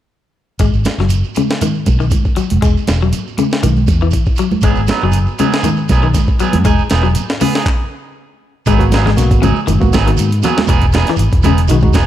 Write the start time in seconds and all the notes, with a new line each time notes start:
0.59 G#1 G#3, kick, closed hi-hat, shekere
0.73 G#1, shekere
0.85 snare, closed hi-hat, high conga, shekere
0.98 F#1 F#3, snare, shekere
1.09 closed hi-hat, shekere
1.24 shekere
1.35 C#3, closed hi-hat, high conga, shekere
1.49 snare, shekere
1.61 D#3, closed hi-hat, high conga, shekere
1.74 shekere
1.86 B1, kick, closed hi-hat, high conga, shekere
2.00 D#3, shekere
2.10 kick, closed hi-hat, high conga, shekere
2.25 kick, shekere
2.36 F#3, muted fingered electric bass stroke, closed hi-hat, shekere
2.50 F#1, closed hi-hat, high conga, shekere
2.62 E1 G#3, kick, closed hi-hat, shekere
2.77 shekere
2.87 E1, snare, closed hi-hat, high conga, shekere
3.02 F#3, shekere
3.13 closed hi-hat, shekere
3.27 shekere
3.38 C#3, closed hi-hat, high conga, shekere
3.51 snare, shekere
3.63 B1 D#3, closed hi-hat, high conga, shekere
3.76 high conga, shekere
3.87 E2, kick, closed hi-hat, high conga, shekere
4.00 E3, shekere
4.11 kick, closed hi-hat, shekere
4.26 kick, shekere
4.36 F#3, closed hi-hat, shekere
4.51 muted fingered electric bass stroke, high conga, shekere
4.62 G#1 F#3 G#3 B3 G#4, muted clean electric guitar stroke, kick, closed hi-hat, shekere
4.75 G#1, shekere
4.87 F#3 B3 D#4, snare, closed hi-hat, high conga, shekere
5.01 F#1 F#3 D#4 G#4, shekere
5.05 B3
5.12 closed hi-hat, shekere
5.27 shekere
5.38 C#3 F#3 B3 D#4 G#4, closed hi-hat, high conga, shekere
5.52 B3 D#4 G#4, snare, shekere
5.63 D#3, closed hi-hat, high conga, shekere
5.77 shekere
5.89 B1 F#3 B3 D#4 G#4, kick, snare, closed hi-hat, high conga, shekere
6.02 D#3, shekere
6.14 kick, snare, closed hi-hat, high conga, shekere
6.27 kick, shekere
6.40 F#3 B3 G#4, muted fingered electric bass stroke, closed hi-hat, shekere
6.53 F#2, closed hi-hat, high conga, shekere
6.65 E1 G#3 D#4 G#4, muted clean electric guitar stroke, kick, closed hi-hat, shekere
6.78 shekere
6.90 E1 B3 D#4 G#4, snare, closed hi-hat, high conga, shekere
7.03 F#3, shekere
7.15 closed hi-hat, shekere
7.29 snare, shekere
7.40 C#3 B3 G#4, muted clean electric guitar stroke, open hi-hat, high conga, shekere
7.54 D#4 G#4, snare, shekere
7.66 kick, clap
8.66 G#1 F#3 G#3 B3 D#4 G#4, kick, closed hi-hat, shekere
8.79 A#3 B3 F#4, kick, closed hi-hat, shekere
8.91 F#3 B3 D#4 G#4, snare, closed hi-hat, high conga, shekere
9.05 G#3, snare, low conga, shekere
9.17 B1 A#3 B3 F#4, snare, closed hi-hat, shekere
9.30 G#1, kick, closed hi-hat, shekere
9.42 C#3 F#3 D#4 G#4, closed hi-hat, high conga, low conga, shekere
9.55 muted fingered electric bass stroke, shekere
9.67 F#1 D#3, closed hi-hat, high conga, shekere
9.80 G#1 A#3 B3 F#4, kick, high conga, shekere
9.93 F#3 B3 D#4 G#4, kick, snare, closed hi-hat, high conga, shekere
10.06 D#3 A#3 B3 F#4, closed hi-hat, shekere
10.17 G#2, closed hi-hat, shekere
10.31 closed hi-hat, shekere
10.42 F#3 A#3 B3 F#4 G#4, muted clean electric guitar stroke, snare, closed hi-hat, low conga, shekere
10.57 snare, high conga, shekere
10.67 E1 B3 D#4 G#4, muted clean electric guitar stroke, kick, closed hi-hat, shekere
10.80 kick, closed hi-hat, shekere
10.92 B3 D#4 G#4, snare, closed hi-hat, high conga, shekere
11.06 E3, muted fingered electric bass stroke, snare, closed hi-hat, shekere
11.16 G#1, closed hi-hat, shekere
11.31 E1, kick, closed hi-hat, shekere
11.43 C#3 B3 D#4 G#4, closed hi-hat, high conga, low conga, shekere
11.57 closed hi-hat, shekere
11.68 B1 D#3 G#3 D#4 F#4, closed hi-hat, shekere
11.80 E1 G#3 D#4 F#4, kick, high conga, shekere
11.93 B3 D#4 G#4, kick, snare, closed hi-hat, high conga, shekere